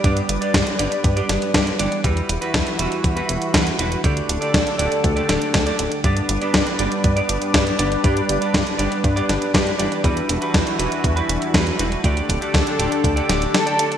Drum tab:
HH |xxxxxxxxxxxxxxxx|xxxxxxxxxxxxxxxx|xxxxxxxxxxxxxxxx|xxxxxxxxxxxxxxxx|
SD |----o-----o-o---|----o-------o---|----o-----o-o---|----o-------o---|
BD |o---o---o---o---|o---o---o---o---|o---o---o---o---|o---o---o---o---|

HH |xxxxxxxxxxxxxxxx|xxxxxxxxxxxxxxxx|xxxxxxxxxxxxxxxx|
SD |----o-----o-o---|----o-------o---|----o-----o-o---|
BD |o---o---o---o---|o---o---o---o---|o-o-o---o-------|